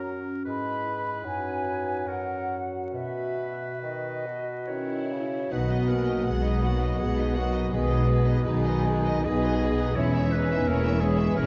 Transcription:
Already playing: harp F#2 A#3 F#4 A#4, bassoon F#3, clarinet C#4, oboe A#4
0.07 harp C#4
0.45 harp G#2, bassoon G#3, clarinet E4, oboe B4, flute section B5
0.84 harp E4 B4
1.22 harp F#2, bassoon F#3, clarinet D#4, flute section G#5
1.63 harp D#4 B4
2.05 harp F#2, clarinet F#4, oboe A#4, flute section F#5
2.47 harp F#4 A#4
2.91 harp B2, bassoon B2, flute section E5
2.97 oboe B4
3.37 harp B3
3.82 bassoon D#3, harp B4, flute section D#5
4.26 bassoon B2, harp F#4
4.67 bassoon D#3, french horn section C#4, violin section E4, harp B4, clarinet C#5
5.11 bassoon C#3, harp F#4
5.50 double bass section B1, harp B2, cello section B2, bassoon B2, trombone section D#3 F#3, viola section B3 F#4, french horn section B3, violin section D#4 F#5, clarinet B4, oboe D#5, flute section F#5
5.69 harp F#3, viola section D#4 B4, violin section D#5
5.87 harp B3, viola section B3 F#4, violin section C#4 F#5, clarinet A#4
5.91 french horn section A#3
6.05 harp D#4, viola section D#4 B4, violin section D#5
6.24 double bass section B1, cello section B2, french horn section G#3, violin section B3 F#5, viola section B3 F#4, clarinet G#4, harp B4
6.43 harp D#4, viola section D#4 B4, violin section D#5
6.62 french horn section F#3, violin section A#3 F#5, viola section B3 F#4, clarinet F#4, harp D#5
6.78 viola section D#4 B4, violin section D#5, harp B5
6.96 double bass section B1, cello section B2, viola section B3 F#4, violin section B3 F#5, clarinet G#4
7.01 french horn section G#3, harp D#5
7.17 viola section D#4 B4, harp B4, violin section D#5
7.35 french horn section F#3, violin section A#3 F#5, viola section B3 F#4, harp D#4, clarinet F#4
7.52 harp F#3, viola section D#4 B4, violin section D#5
7.70 double bass section B1, cello section B2, bassoon B2, harp B2, trombone section D#3 G#3, viola section B3 G#4, violin section B3 B4, clarinet G#4, oboe D#5, flute section G#5
7.75 french horn section G#3
7.89 harp G#3, viola section D#4 B4, violin section D#5
8.06 viola section B3 G#4, harp B3, violin section B4
8.25 viola section D#4 B4, harp D#4, violin section D#5
8.43 double bass section B1, bassoon B2, cello section B2, french horn section D#3, violin section G#3 B4, viola section B3 G#4, clarinet D#4, harp B4, oboe D#5, flute section G#5
8.63 viola section D#4 B4, harp D#4, violin section D#5
8.84 viola section B3 G#4, violin section B4, harp D#5
9.02 viola section D#4 B4, violin section D#5, harp B5
9.22 double bass section B1, bassoon B2, cello section B2, viola section B3 G#4, french horn section D#4, violin section G#4 B4, oboe D#5, harp D#5, clarinet D#5, flute section G#5
9.41 viola section D#4 B4, harp B4, violin section D#5
9.59 viola section B3 G#4, harp D#4, violin section B4
9.77 harp G#3, viola section D#4 B4, violin section D#5
9.95 double bass section E1, cello section E2, bassoon E3, harp E3, trombone section E3 G#3, french horn section C#4, violin section E4 C#5, viola section E4 G#4, clarinet C#5, oboe E5, flute section G#5
10.13 harp C#4, viola section C#4 E4, violin section E5
10.30 french horn section B3, violin section D#4 C#5, viola section E4 G#4, harp E4, clarinet B4
10.48 viola section C#4 E4, harp G#4, violin section E5
10.65 double bass section E1, cello section E2, french horn section A#3, violin section C#4 C#5, viola section E4 G#4, clarinet A#4, harp C#5
10.84 viola section C#4 E4, violin section E5, harp E5
11.00 french horn section G#3, violin section B3 C#5, viola section E4 G#4, clarinet G#4, harp G#5
11.18 viola section C#4 E4, violin section E5, harp C#6
11.34 double bass section E1, cello section E2, french horn section A#3, violin section C#4 C#5, viola section E4 G#4, clarinet A#4, harp G#5

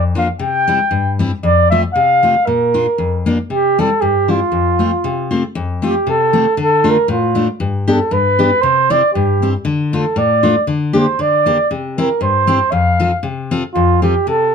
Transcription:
Already playing: steel-string acoustic guitar F2
0.15 steel-string acoustic guitar A#3 D4 F4, flugelhorn F5
0.39 steel-string acoustic guitar C3, flugelhorn G5
0.68 steel-string acoustic guitar G3 C4 E4
0.91 steel-string acoustic guitar G2
1.19 steel-string acoustic guitar G3 C4 E4
1.43 steel-string acoustic guitar F2, flugelhorn D5
1.70 steel-string acoustic guitar A3 C4 F4, flugelhorn E5
1.94 steel-string acoustic guitar C3, flugelhorn F5
2.23 steel-string acoustic guitar A3 C4 F4
2.46 steel-string acoustic guitar A#2, flugelhorn A#4
2.74 steel-string acoustic guitar A#3 D4 F4
2.98 steel-string acoustic guitar F2
3.26 steel-string acoustic guitar A#3 D4 F4
3.50 steel-string acoustic guitar C3, flugelhorn G4
3.79 steel-string acoustic guitar G3 C4 E4, flugelhorn A4
4.01 steel-string acoustic guitar G2, flugelhorn G4
4.28 steel-string acoustic guitar G3 C4 E4, flugelhorn F4
4.52 steel-string acoustic guitar F2
4.79 steel-string acoustic guitar A3 C4 F4
5.04 steel-string acoustic guitar C3
5.31 steel-string acoustic guitar A3 C4 F4
5.55 steel-string acoustic guitar F2
5.82 steel-string acoustic guitar A3 C4 F4, flugelhorn G4
6.07 steel-string acoustic guitar C3, flugelhorn A4
6.33 steel-string acoustic guitar A3 C4 F4
6.57 steel-string acoustic guitar D3
6.62 flugelhorn A4
6.84 steel-string acoustic guitar A3 D4 F4
6.89 flugelhorn A#4
7.08 steel-string acoustic guitar A2, flugelhorn F4
7.35 steel-string acoustic guitar A3 D4 F4
7.60 steel-string acoustic guitar G2
7.88 steel-string acoustic guitar B3 D4 G4, flugelhorn A4
8.11 steel-string acoustic guitar G2, flugelhorn B4
8.39 steel-string acoustic guitar B3 D4 G4
8.61 steel-string acoustic guitar C3, flugelhorn C5
8.90 steel-string acoustic guitar C4 E4 G4, flugelhorn D5
9.13 steel-string acoustic guitar G2, flugelhorn G4
9.42 steel-string acoustic guitar C4 E4 G4
9.65 steel-string acoustic guitar D3
9.92 steel-string acoustic guitar A3 D4 F4, flugelhorn A4
10.16 steel-string acoustic guitar A2, flugelhorn D5
10.43 steel-string acoustic guitar A3 D4 F4
10.67 steel-string acoustic guitar D3
10.93 steel-string acoustic guitar A#3 D4 G4, flugelhorn C5
11.19 steel-string acoustic guitar D3, flugelhorn D5
11.46 steel-string acoustic guitar A#3 D4 G4
11.71 steel-string acoustic guitar C3
11.98 steel-string acoustic guitar C4 E4 G4, flugelhorn A#4
12.21 steel-string acoustic guitar G2, flugelhorn C5
12.47 steel-string acoustic guitar C4 E4 G4
12.72 steel-string acoustic guitar F2, flugelhorn F5
13.00 steel-string acoustic guitar C4 F4 A4
13.23 steel-string acoustic guitar C3
13.51 steel-string acoustic guitar C4 F4 A4
13.74 steel-string acoustic guitar F2, flugelhorn F4
14.02 steel-string acoustic guitar C4 F4 A4, flugelhorn G4
14.27 steel-string acoustic guitar C3, flugelhorn A4

